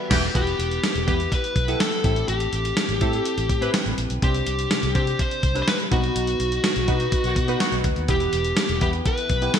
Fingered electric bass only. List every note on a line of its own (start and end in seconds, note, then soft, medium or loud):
0.11 0.27 E1 loud
0.35 0.53 E1 medium
0.59 0.77 E1 medium
0.95 1.05 E1 medium
1.08 1.26 E2 medium
1.56 1.74 B1 medium
2.04 2.22 A1 medium
2.28 2.47 A1 medium
2.53 2.71 A1 medium
2.89 2.98 A1 medium
3.01 3.19 A2 medium
3.38 3.47 A1 medium
3.49 3.68 A2 medium
3.86 3.95 A1 medium
3.98 4.07 A#1 medium
4.10 4.19 B1 medium
4.22 4.40 C2 medium
4.47 4.65 C2 medium
4.83 4.92 C2 medium
4.95 5.13 C3 medium
5.43 5.61 C2 medium
5.92 6.10 B1 medium
6.16 6.34 B1 medium
6.40 6.58 B1 medium
6.76 6.85 B1 medium
6.88 7.06 B2 medium
7.24 7.33 B1 medium
7.36 7.55 B2 medium
7.72 7.81 B1 medium
7.84 7.93 D2 medium
7.97 8.06 D#2 medium
8.08 8.27 E1 medium
8.33 8.51 E1 medium
8.69 8.79 E1 medium
8.81 9.00 E2 medium
9.30 9.48 B1 medium